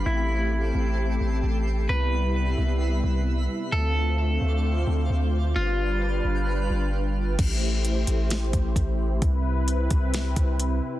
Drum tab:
CC |--------|--------|--------|--------|
HH |--------|--------|--------|--------|
SD |--------|--------|--------|--------|
BD |--------|--------|--------|--------|

CC |x-------|--------|
HH |x-xxxxx-|x-xxxxx-|
SD |----o---|----o---|
BD |o----oo-|o--o-o--|